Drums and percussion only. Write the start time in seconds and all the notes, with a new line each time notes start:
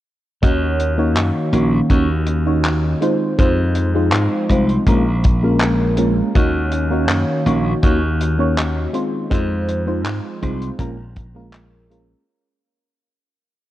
0.43 kick, closed hi-hat
0.80 closed hi-hat
1.17 clap, closed hi-hat
1.54 closed hi-hat
1.90 kick, closed hi-hat
2.27 closed hi-hat
2.65 clap, closed hi-hat
3.02 closed hi-hat
3.39 kick, closed hi-hat
3.75 closed hi-hat
4.12 clap, closed hi-hat
4.49 kick, closed hi-hat
4.69 closed hi-hat
4.86 kick, closed hi-hat
5.24 kick, closed hi-hat
5.60 clap, closed hi-hat
5.97 closed hi-hat
6.35 kick, closed hi-hat
6.72 closed hi-hat
7.09 clap, closed hi-hat
7.47 closed hi-hat
7.83 kick, closed hi-hat
8.21 closed hi-hat
8.59 clap, closed hi-hat
8.94 closed hi-hat
9.31 kick, closed hi-hat
9.69 closed hi-hat
10.05 clap, closed hi-hat
10.43 kick, closed hi-hat
10.62 closed hi-hat
10.79 kick, closed hi-hat
11.16 kick, closed hi-hat
11.53 clap, closed hi-hat
11.92 closed hi-hat